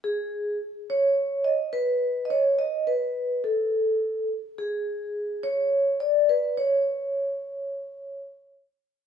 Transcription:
\new Staff \with { instrumentName = "Vibraphone" } { \time 4/4 \key gis \phrygian \tempo 4 = 106 gis'4 r8 cis''4 dis''8 b'8.~ b'32 dis''32 | cis''8 dis''8 b'4 a'4. r8 | gis'4. cis''4 d''8 b'8 cis''8~ | cis''2. r4 | }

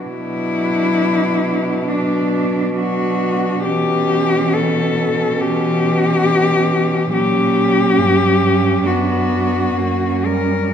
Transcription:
<<
  \new Staff \with { instrumentName = "Cello" } { \time 4/4 \key b \minor \tempo 4 = 68 e'2 d'4 fis'4 | g'4 a'4 g'2 | g'2 fis'4. ais'8 | }
  \new Staff \with { instrumentName = "Cello" } { \time 4/4 \key b \minor d'2 d'4 d'4 | cis'2 cis'2 | cis'2 d'4 cis'4 | }
  \new Staff \with { instrumentName = "Cello" } { \clef bass \time 4/4 \key b \minor fis2 fis4 fis4 | e2 e2 | fis2 b4 ais8 g8 | }
  \new Staff \with { instrumentName = "Cello" } { \clef bass \time 4/4 \key b \minor b,1 | b,1 | ais,4 g,4 fis,4 fis,4 | }
>>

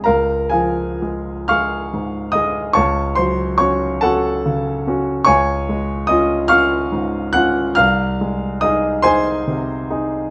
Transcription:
\new Staff \with { instrumentName = "Grand piano" } { \time 12/8 \key des \major \tempo 4. = 47 << { <bes' f'' bes''>8 <aes' f'' aes''>4 <f'' des''' f'''>4 <ees'' ees'''>8 <des'' a'' des'''>8 <c'' c'''>8 <des'' des'''>8 <a' ges'' a''>4. | <des'' aes'' des'''>4 <ees'' ees'''>8 <f'' des''' f'''>4 <ges'' ges'''>8 <f'' f'''>4 <ees'' ees'''>8 <c'' aes'' c'''>4. | } \\ { des,8 f8 <aes aes'>8 <aes aes'>8 aes,8 <aes aes'>8 des,8 ges8 <des' ges'>8 <des' ges'>8 des8 <des' ges'>8 | des,8 aes8 <des' f'>8 <des' f'>8 aes,8 <des' f'>8 c,8 aes8 <ees' aes'>8 <ees' aes'>8 c8 <ees' aes'>8 | } >> }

